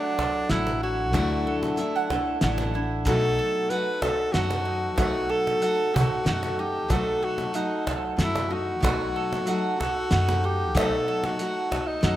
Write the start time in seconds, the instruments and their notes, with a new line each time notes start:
Already playing: steel-string acoustic guitar F#3 A3 D4 E4, mandolin A3 F#5, tenor saxophone D4
0.19 mandolin A4, cajon bass, cajon slap
0.49 upright bass A1, steel-string acoustic guitar F#3 A3 D4 E4, tenor saxophone E4, mandolin E4 A4 F#5, snare, closed hi-hat
0.67 cajon slap
0.83 mandolin E4, tenor saxophone F#4
1.13 upright bass D2, steel-string acoustic guitar D3 F#3 A3 D4 E4, mandolin A3 F#5, kick, cajon bass, cajon slap, closed hi-hat
1.47 mandolin A4
1.63 cajon slap
1.76 steel-string acoustic guitar F#3 A3 D4, mandolin E5, cajon slap, closed hi-hat
1.80 steel-string acoustic guitar E4
1.96 mandolin F#5
2.10 steel-string acoustic guitar A3 D4 E4, mandolin A4, cajon bass, cajon slap
2.41 upright bass A1, steel-string acoustic guitar F#3 A3 D4 E4, mandolin E4 A4 F#5, snare, closed hi-hat
2.58 cajon slap
2.74 steel-string acoustic guitar A3 D4 E4, mandolin E4
3.05 upright bass B1, steel-string acoustic guitar B2 F#3 A3 D#4 F#4, mandolin A3 F#5, tenor saxophone A4, kick, cajon bass, cajon slap, closed hi-hat
3.39 mandolin A4
3.70 steel-string acoustic guitar F#3 A3 D#4, tenor saxophone B4, mandolin F#5, cajon slap, closed hi-hat
3.74 steel-string acoustic guitar F#4
4.02 steel-string acoustic guitar D#4 F#4, mandolin A4, tenor saxophone A4, cajon bass, cajon slap
4.06 steel-string acoustic guitar A3
4.32 upright bass F#2, steel-string acoustic guitar F#3 A3 D#4 F#4, mandolin D#4 A4 F#5, tenor saxophone F#4, snare, closed hi-hat
4.50 cajon slap
4.65 mandolin D#4
4.96 upright bass B1, steel-string acoustic guitar B2 F#3 A3 D#4 F#4, mandolin A3 F#5, tenor saxophone F#4, cajon bass, kick, cajon slap, closed hi-hat
5.29 mandolin A4, tenor saxophone A4
5.47 cajon slap
5.60 steel-string acoustic guitar F#3 A3 D#4 F#4, mandolin F#5, closed hi-hat
5.80 cajon slap
5.91 steel-string acoustic guitar A3 D#4 F#4, tenor saxophone F#4, mandolin A4
5.96 cajon bass
6.24 upright bass F#2, steel-string acoustic guitar F#3 A3 D#4, mandolin D#4 A4, snare, closed hi-hat
6.28 steel-string acoustic guitar F#4, mandolin F#5
6.43 cajon slap
6.59 steel-string acoustic guitar A3 D#4, mandolin D#4, tenor saxophone G4
6.88 upright bass B1, steel-string acoustic guitar B2 F#3 A3 D#4 F#4, mandolin A3 F#5, tenor saxophone A4, cajon bass, kick, cajon slap, closed hi-hat
7.23 tenor saxophone F#4, mandolin A4
7.38 cajon slap
7.53 steel-string acoustic guitar F#3 A3 D#4, tenor saxophone D#4, mandolin F#5, cajon slap, closed hi-hat
7.57 steel-string acoustic guitar F#4
7.87 mandolin A4, cajon bass, cajon slap
8.17 upright bass F#2, steel-string acoustic guitar F#3 A3, mandolin A4 F#5, snare, closed hi-hat
8.21 tenor saxophone E4, steel-string acoustic guitar F#4
8.35 cajon slap
8.50 steel-string acoustic guitar A3 D#4 F#4, mandolin D#4, tenor saxophone F#4
8.80 upright bass B1, steel-string acoustic guitar B2 F#3 A3 D#4 F#4, mandolin A3 F#5, kick, cajon bass, cajon slap, closed hi-hat
9.16 mandolin A4
9.32 cajon slap
9.46 steel-string acoustic guitar F#3 A3 D#4, mandolin F#5, cajon slap, closed hi-hat
9.50 steel-string acoustic guitar F#4
9.76 steel-string acoustic guitar A3 D#4 F#4, mandolin A4
9.81 tenor saxophone F#4, cajon bass, cajon slap
10.10 upright bass F#2, steel-string acoustic guitar A3 D#4, mandolin D#4 A4 F#5, snare, closed hi-hat
10.29 cajon slap
10.44 mandolin D#4, tenor saxophone G4
10.75 upright bass B1, steel-string acoustic guitar B2 F#3 A3 D#4 F#4, mandolin A3 F#5, tenor saxophone A4, kick, cajon bass, cajon slap, closed hi-hat
11.08 mandolin A4
11.24 tenor saxophone F#4, cajon slap
11.39 steel-string acoustic guitar F#3 A3 D#4 F#4, mandolin F#5, cajon slap, closed hi-hat
11.71 steel-string acoustic guitar A3 D#4 F#4, mandolin A4, cajon bass, cajon slap
11.87 tenor saxophone D#4
12.01 upright bass F#2, steel-string acoustic guitar F#3 A3 D#4 F#4, mandolin D#4 A4 F#5, snare, closed hi-hat